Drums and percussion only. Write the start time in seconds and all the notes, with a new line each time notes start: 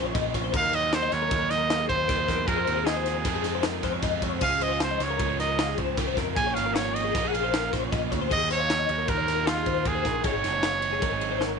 0.15 kick, ride
0.34 kick, ride
0.54 kick, crash
0.73 ride
0.93 snare, ride
1.12 snare, ride
1.31 kick, ride
1.51 snare, ride
1.70 snare, ride
1.89 kick, ride
2.09 kick, snare, ride
2.28 kick, snare, ride
2.48 kick, ride
2.67 ride
2.87 snare, ride
3.06 snare, ride
3.25 kick, snare, ride
3.44 snare, ride
3.63 snare, ride
3.83 kick, snare, ride
4.02 kick, snare, ride
4.22 kick, ride
4.41 kick, crash
4.61 ride
4.80 snare, ride
5.00 snare, ride
5.19 kick, ride
5.40 snare, ride
5.59 snare, ride
5.78 kick, ride
5.97 kick, snare, ride
6.17 kick, snare, ride
6.37 kick, ride
6.57 snare, ride
6.75 snare, ride
6.96 ride
7.15 kick, snare, ride
7.34 ride
7.54 snare, ride
7.73 kick, snare, ride
7.93 kick, snare, ride
8.12 kick, ride
8.31 kick, crash
8.51 snare, ride
8.70 snare, ride
8.89 ride
9.08 kick, ride
9.28 snare, ride
9.47 snare, ride
9.66 kick, ride
9.85 kick, ride
10.05 kick, snare, ride
10.24 kick, ride
10.44 snare, ride
10.63 snare, ride
10.82 ride
11.02 kick, ride
11.21 ride
11.41 snare